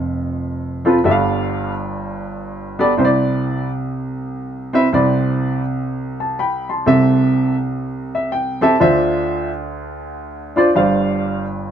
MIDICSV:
0, 0, Header, 1, 2, 480
1, 0, Start_track
1, 0, Key_signature, 0, "major"
1, 0, Tempo, 485830
1, 1028, Time_signature, 4, 2, 24, 8
1, 11570, End_track
2, 0, Start_track
2, 0, Title_t, "Upright piano"
2, 0, Program_c, 0, 0
2, 0, Note_on_c, 0, 29, 60
2, 0, Note_on_c, 0, 41, 58
2, 839, Note_on_c, 0, 60, 69
2, 846, Note_on_c, 0, 65, 67
2, 852, Note_on_c, 0, 69, 61
2, 858, Note_on_c, 0, 71, 71
2, 960, Note_off_c, 0, 60, 0
2, 964, Note_off_c, 0, 65, 0
2, 966, Note_off_c, 0, 69, 0
2, 969, Note_off_c, 0, 71, 0
2, 989, Note_off_c, 0, 41, 0
2, 991, Note_off_c, 0, 29, 0
2, 1028, Note_on_c, 0, 59, 71
2, 1032, Note_on_c, 0, 31, 67
2, 1032, Note_on_c, 0, 67, 67
2, 1035, Note_on_c, 0, 43, 69
2, 1038, Note_on_c, 0, 69, 62
2, 1043, Note_on_c, 0, 76, 69
2, 1099, Note_on_c, 0, 77, 77
2, 1107, Note_off_c, 0, 76, 0
2, 1689, Note_off_c, 0, 59, 0
2, 1691, Note_off_c, 0, 67, 0
2, 1694, Note_off_c, 0, 69, 0
2, 1725, Note_off_c, 0, 77, 0
2, 2757, Note_on_c, 0, 59, 77
2, 2759, Note_on_c, 0, 67, 61
2, 2769, Note_on_c, 0, 69, 59
2, 2773, Note_on_c, 0, 74, 84
2, 2880, Note_off_c, 0, 59, 0
2, 2881, Note_off_c, 0, 67, 0
2, 2886, Note_off_c, 0, 69, 0
2, 2888, Note_off_c, 0, 74, 0
2, 2911, Note_off_c, 0, 31, 0
2, 2913, Note_off_c, 0, 43, 0
2, 2935, Note_on_c, 0, 60, 65
2, 2939, Note_on_c, 0, 64, 62
2, 2947, Note_on_c, 0, 36, 60
2, 2947, Note_on_c, 0, 48, 59
2, 2948, Note_on_c, 0, 71, 61
2, 2951, Note_on_c, 0, 72, 62
2, 3011, Note_on_c, 0, 74, 81
2, 3022, Note_off_c, 0, 72, 0
2, 3603, Note_off_c, 0, 60, 0
2, 3605, Note_off_c, 0, 64, 0
2, 3609, Note_off_c, 0, 71, 0
2, 3641, Note_off_c, 0, 74, 0
2, 4676, Note_on_c, 0, 60, 75
2, 4681, Note_on_c, 0, 64, 66
2, 4687, Note_on_c, 0, 71, 69
2, 4694, Note_on_c, 0, 76, 81
2, 4800, Note_off_c, 0, 60, 0
2, 4802, Note_off_c, 0, 64, 0
2, 4805, Note_off_c, 0, 71, 0
2, 4808, Note_off_c, 0, 76, 0
2, 4829, Note_off_c, 0, 36, 0
2, 4829, Note_off_c, 0, 48, 0
2, 4865, Note_on_c, 0, 60, 73
2, 4868, Note_on_c, 0, 64, 61
2, 4869, Note_on_c, 0, 48, 62
2, 4871, Note_on_c, 0, 36, 63
2, 4877, Note_on_c, 0, 71, 68
2, 4881, Note_on_c, 0, 74, 79
2, 5528, Note_off_c, 0, 60, 0
2, 5530, Note_off_c, 0, 64, 0
2, 5534, Note_off_c, 0, 71, 0
2, 5536, Note_off_c, 0, 74, 0
2, 6128, Note_on_c, 0, 81, 50
2, 6299, Note_off_c, 0, 81, 0
2, 6316, Note_on_c, 0, 83, 66
2, 6321, Note_on_c, 0, 79, 56
2, 6599, Note_off_c, 0, 83, 0
2, 6601, Note_off_c, 0, 79, 0
2, 6613, Note_on_c, 0, 84, 54
2, 6618, Note_on_c, 0, 81, 45
2, 6750, Note_off_c, 0, 48, 0
2, 6751, Note_off_c, 0, 36, 0
2, 6778, Note_on_c, 0, 60, 68
2, 6783, Note_on_c, 0, 36, 62
2, 6783, Note_on_c, 0, 67, 65
2, 6785, Note_on_c, 0, 69, 65
2, 6787, Note_on_c, 0, 48, 62
2, 6793, Note_on_c, 0, 76, 83
2, 7068, Note_off_c, 0, 84, 0
2, 7070, Note_off_c, 0, 81, 0
2, 7445, Note_off_c, 0, 60, 0
2, 7447, Note_off_c, 0, 67, 0
2, 7448, Note_off_c, 0, 69, 0
2, 7452, Note_off_c, 0, 76, 0
2, 8050, Note_on_c, 0, 76, 62
2, 8217, Note_off_c, 0, 76, 0
2, 8221, Note_on_c, 0, 79, 68
2, 8504, Note_off_c, 0, 79, 0
2, 8509, Note_on_c, 0, 60, 74
2, 8516, Note_on_c, 0, 67, 73
2, 8518, Note_on_c, 0, 69, 68
2, 8518, Note_on_c, 0, 81, 68
2, 8527, Note_on_c, 0, 76, 80
2, 8637, Note_off_c, 0, 60, 0
2, 8640, Note_off_c, 0, 67, 0
2, 8641, Note_off_c, 0, 69, 0
2, 8646, Note_off_c, 0, 76, 0
2, 8667, Note_off_c, 0, 36, 0
2, 8669, Note_off_c, 0, 48, 0
2, 8691, Note_off_c, 0, 81, 0
2, 8691, Note_on_c, 0, 62, 67
2, 8695, Note_on_c, 0, 65, 58
2, 8698, Note_on_c, 0, 50, 61
2, 8700, Note_on_c, 0, 72, 68
2, 8701, Note_on_c, 0, 38, 65
2, 8707, Note_on_c, 0, 76, 84
2, 9361, Note_off_c, 0, 62, 0
2, 9363, Note_off_c, 0, 65, 0
2, 9366, Note_off_c, 0, 72, 0
2, 9369, Note_off_c, 0, 76, 0
2, 10433, Note_on_c, 0, 62, 74
2, 10442, Note_on_c, 0, 65, 70
2, 10446, Note_on_c, 0, 72, 64
2, 10453, Note_on_c, 0, 74, 79
2, 10558, Note_off_c, 0, 62, 0
2, 10563, Note_off_c, 0, 65, 0
2, 10564, Note_off_c, 0, 72, 0
2, 10568, Note_off_c, 0, 74, 0
2, 10584, Note_off_c, 0, 50, 0
2, 10585, Note_off_c, 0, 38, 0
2, 10619, Note_on_c, 0, 62, 67
2, 10624, Note_on_c, 0, 31, 61
2, 10624, Note_on_c, 0, 67, 64
2, 10625, Note_on_c, 0, 43, 59
2, 10626, Note_on_c, 0, 72, 61
2, 10634, Note_on_c, 0, 77, 78
2, 11284, Note_off_c, 0, 62, 0
2, 11287, Note_off_c, 0, 67, 0
2, 11288, Note_off_c, 0, 72, 0
2, 11292, Note_off_c, 0, 77, 0
2, 11570, Note_off_c, 0, 31, 0
2, 11570, Note_off_c, 0, 43, 0
2, 11570, End_track
0, 0, End_of_file